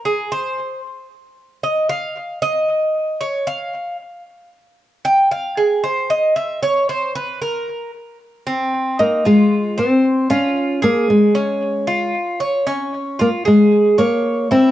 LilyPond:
<<
  \new Staff \with { instrumentName = "Cuban tres" } { \time 4/4 \key f \minor \tempo 4 = 114 aes'8 c''4 r4. ees''8 f''8~ | f''8 ees''4. des''8 f''4 r8 | r4. g''8 f''8 aes'8 c''8 ees''8 | e''8 des''8 c''8 b'8 bes'4 r4 |
c'4 ees'8 f'4 c''4 f'8~ | f'8 aes'4 des'4 f'4 des''8 | des'4 f'8 aes'4 des''4 e'8 | }
  \new Staff \with { instrumentName = "Nylon-string guitar" } { \time 4/4 \key f \minor r1 | r1 | r1 | r1 |
r4 bes8 aes4 c'4 des'8~ | des'8 bes8 aes2 r4 | r4 bes8 aes4 bes4 c'8 | }
>>